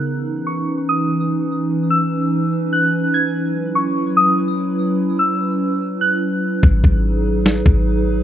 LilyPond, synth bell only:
\new Staff \with { instrumentName = "Synth bell" } { \time 4/4 \key gis \minor \tempo 4 = 146 r4 cis'''4 dis'''2 | r8 e'''2 fis'''4 gis'''8 | r4 cis'''4 dis'''2 | r8 e'''2 fis'''4. |
r1 | }